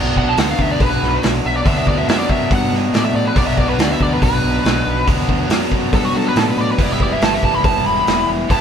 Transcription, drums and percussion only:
0.16 kick medium
0.37 snare loud
0.37 open hi-hat medium
0.59 kick medium
0.80 kick loud
0.80 open hi-hat soft
1.03 snare soft
1.23 snare loud
1.23 open hi-hat soft
1.66 kick loud
1.66 open hi-hat medium
1.87 kick medium
2.09 snare loud
2.09 open hi-hat medium
2.30 kick medium
2.51 kick loud
2.51 open hi-hat medium
2.74 snare soft
2.94 snare medium
2.94 open hi-hat soft
3.36 kick loud
3.36 open hi-hat medium
3.58 kick medium
3.79 snare loud
3.79 open hi-hat medium
4.00 kick medium
4.22 kick loud
4.22 open hi-hat medium
4.65 snare loud
4.65 open hi-hat soft
5.07 kick loud
5.07 open hi-hat medium
5.29 kick medium
5.50 snare loud
5.50 open hi-hat medium
5.72 kick medium
5.93 kick loud
5.93 open hi-hat medium
6.36 snare loud
6.36 open hi-hat soft
6.79 kick loud
6.79 open hi-hat medium
7.00 kick medium
7.22 snare loud
7.22 open hi-hat medium
7.43 kick medium
7.64 kick loud
7.64 open hi-hat medium
8.07 snare loud
8.07 open hi-hat soft
8.50 kick loud
8.50 open hi-hat medium

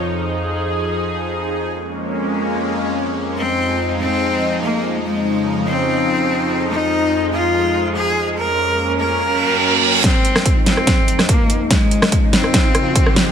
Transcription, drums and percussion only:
0.04 closed hi-hat medium
0.25 closed hi-hat soft
0.46 closed hi-hat medium
0.66 closed hi-hat soft
0.87 closed hi-hat medium
1.08 closed hi-hat soft
1.29 closed hi-hat medium
1.50 closed hi-hat soft
1.71 closed hi-hat medium
1.91 closed hi-hat soft
2.12 closed hi-hat medium
2.33 closed hi-hat soft
2.54 closed hi-hat medium
2.75 closed hi-hat soft
2.96 closed hi-hat medium
3.16 closed hi-hat soft
3.37 closed hi-hat medium
3.58 closed hi-hat soft
3.79 closed hi-hat medium
4.00 closed hi-hat soft
4.21 closed hi-hat medium
4.41 closed hi-hat soft
4.62 closed hi-hat medium
4.83 closed hi-hat soft
5.04 closed hi-hat medium
5.25 closed hi-hat soft
5.46 closed hi-hat medium
5.66 closed hi-hat soft
5.87 closed hi-hat medium
6.29 closed hi-hat medium
6.50 closed hi-hat soft
6.71 closed hi-hat medium
6.91 closed hi-hat soft
7.12 closed hi-hat medium
7.33 closed hi-hat soft
7.54 closed hi-hat medium
7.75 closed hi-hat soft
7.96 closed hi-hat medium
8.16 closed hi-hat medium
8.37 closed hi-hat medium
8.58 closed hi-hat soft
8.79 closed hi-hat medium
9.00 closed hi-hat medium
9.21 closed hi-hat medium
9.41 closed hi-hat medium
9.62 closed hi-hat medium
9.83 closed hi-hat medium
10.04 kick medium
10.04 snare soft
10.04 closed hi-hat medium
10.25 closed hi-hat soft
10.36 cross-stick medium
10.36 snare soft
10.46 kick medium
10.46 closed hi-hat medium
10.66 snare soft
10.66 closed hi-hat medium
10.77 cross-stick soft
10.87 kick medium
10.87 snare soft
10.87 closed hi-hat medium
11.08 closed hi-hat medium
11.19 cross-stick soft
11.19 snare soft
11.29 kick loud
11.29 closed hi-hat medium
11.50 closed hi-hat medium
11.71 kick medium
11.71 snare soft
11.71 closed hi-hat medium
11.91 closed hi-hat medium
12.02 cross-stick medium
12.02 snare soft
12.12 kick medium
12.12 closed hi-hat medium
12.33 snare medium
12.33 closed hi-hat medium
12.44 cross-stick soft
12.54 kick medium
12.54 snare medium
12.54 closed hi-hat medium
12.75 cross-stick medium
12.75 closed hi-hat soft
12.96 kick medium
12.96 closed hi-hat medium
13.06 cross-stick medium
13.16 snare medium
13.16 closed hi-hat medium

